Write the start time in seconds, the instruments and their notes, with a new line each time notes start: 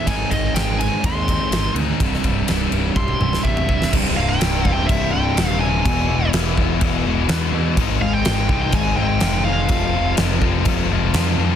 0.06 picked electric bass G#1, distorted electric guitar G#2 D#3 G#3 C4, lead electric guitar G#5, kick, ride
0.10 distorted electric guitar D#4 G#4
0.30 picked electric bass G#1, distorted electric guitar D#4 G#4, lead electric guitar D#5, kick, ride
0.35 distorted electric guitar G#3 C4
0.54 picked electric bass G#1, distorted electric guitar G#2 D#3 G#3, lead electric guitar G5, snare, ride
0.58 distorted electric guitar C4 D#4 G#4
0.80 distorted electric guitar G#2 D#3 G#4, lead electric guitar G#5, ride
0.84 distorted electric guitar G#3 C4 D#4
1.04 picked electric bass D#2, distorted electric guitar G#3 C4, lead electric guitar C6, kick, ride
1.08 distorted electric guitar D#4 G#4
1.28 distorted electric guitar G#3 D#4 G#4, kick, ride
1.32 distorted electric guitar G#2 D#3 C4
1.51 picked electric bass G#1, distorted electric guitar G#3, snare, ride
1.55 distorted electric guitar G#2 D#3 C4 D#4 G#4
1.75 picked electric bass D2, ride
1.79 distorted electric guitar G#3 C4 D#4 G#4
2.00 picked electric bass C1, distorted electric guitar C2 G2 C3 G3, kick, ride
2.05 distorted electric guitar E4
2.14 snare
2.24 picked electric bass C1, distorted electric guitar G3 E4, kick, ride
2.28 distorted electric guitar C3
2.48 picked electric bass C1, distorted electric guitar C2 G2 C3 G3 E4, snare, ride
2.72 picked electric bass C1, distorted electric guitar C2 G2 G3 E4, ride
2.76 distorted electric guitar C3
2.95 picked electric bass C1, distorted electric guitar G2 C3 G3, lead electric guitar C6, kick, high tom
2.99 distorted electric guitar E4
3.08 high tom
3.19 picked electric bass C1, distorted electric guitar C3 G3 E4, mid tom
3.23 distorted electric guitar C2 G2
3.33 snare
3.43 picked electric bass A1, distorted electric guitar C2 G2 C3, lead electric guitar E5, kick
3.48 distorted electric guitar G3 E4
3.57 mid tom
3.68 picked electric bass C1, distorted electric guitar C3 G3 E4, kick
3.82 snare
3.92 picked electric bass C1, distorted electric guitar C2 G2 C3 G3 E4, kick, crash
4.16 picked electric bass C1, distorted electric guitar C2 G2 C3 G3 E4, lead electric guitar F5
4.29 lead electric guitar G5
4.40 picked electric bass C1, distorted electric guitar C2 G2 C3 G3 E4, snare, crash
4.64 picked electric bass E1, distorted electric guitar C3 G3 E4, kick
4.68 distorted electric guitar C2 G2
4.74 lead electric guitar G5
4.87 picked electric bass C1, distorted electric guitar C2 G2 C3, lead electric guitar E5, kick, crash
4.92 distorted electric guitar G3 E4
5.11 picked electric bass C1, distorted electric guitar C2 G2 E4, lead electric guitar G5
5.17 distorted electric guitar C3 G3
5.37 picked electric bass D#1, distorted electric guitar C2 G2 C3 G3, snare, crash
5.41 distorted electric guitar E4
5.61 distorted electric guitar C2 G2 G3 E4, lead electric guitar G#5
5.65 distorted electric guitar C3
5.85 picked electric bass E1, distorted electric guitar E2 B2 E3 G#3 B3, kick, crash
5.89 distorted electric guitar E4
6.09 distorted electric guitar E2 B2 B3 E4
6.13 distorted electric guitar E3 G#3
6.33 picked electric bass E1, distorted electric guitar E2 B2 E3 G#3 B3 E4, snare, crash
6.57 picked electric bass E1, distorted electric guitar E2 B2 E3 G#3 B3 E4, kick
6.80 picked electric bass E1, distorted electric guitar E2 B2 E3 G#3, kick, crash
6.84 distorted electric guitar B3 E4
7.05 picked electric bass E1, distorted electric guitar E2 B2 G#3 B3 E4
7.09 distorted electric guitar E3
7.29 distorted electric guitar E2 B2 E3 G#3 B3 E4, picked electric bass E2, snare, crash
7.52 picked electric bass E2, distorted electric guitar E2 B2 G#3 B3 E4
7.56 distorted electric guitar E3
7.77 picked electric bass G#1, distorted electric guitar G#2 D#3 G#3 C4 D#4 G#4, kick, crash
8.00 picked electric bass G#1, distorted electric guitar G#2 D#3 C4 D#4 G#4, lead electric guitar F5
8.05 distorted electric guitar G#3
8.13 lead electric guitar G5
8.25 picked electric bass G#1, distorted electric guitar G#2 D#3 G#3 C4 D#4 G#4, snare, crash
8.48 picked electric bass C2, distorted electric guitar G#2 D#3 G#3 C4 D#4 G#4, kick
8.62 lead electric guitar G5
8.72 picked electric bass G#1, distorted electric guitar G#2 D#3 G#3 C4 D#4 G#4, lead electric guitar G#5, kick, crash
8.96 picked electric bass G#1, distorted electric guitar G#2 D#3 G#3 C4 D#4 G#4, lead electric guitar G5
9.20 picked electric bass F1, distorted electric guitar G#2 D#3 G#3 C4 D#4 G#4, snare, crash
9.45 distorted electric guitar G#2 D#3 G#3 C4 D#4 G#4, lead electric guitar F5
9.69 picked electric bass F1, distorted electric guitar F2 C3 F3 G#3 C4 F4, kick, crash
9.94 distorted electric guitar F2 C3 F3 G#3 C4 F4
10.17 picked electric bass F1, distorted electric guitar F2 C3 F3 G#3 C4, snare, crash
10.21 distorted electric guitar F4
10.41 picked electric bass F1, distorted electric guitar F2 C3 F3 G#3 C4 F4, kick
10.46 distorted electric guitar F2
10.65 picked electric bass F1, distorted electric guitar F2 C3 F3 G#3 C4 F4, kick, crash
10.90 picked electric bass F1, distorted electric guitar F2 C3 F3 G#3 C4 F4
11.14 distorted electric guitar F2 C3 F3 G#3 C4 F4, picked electric bass F2, snare, crash
11.37 distorted electric guitar F2 C3 G#3 C4 F4, picked electric bass F2
11.42 distorted electric guitar F3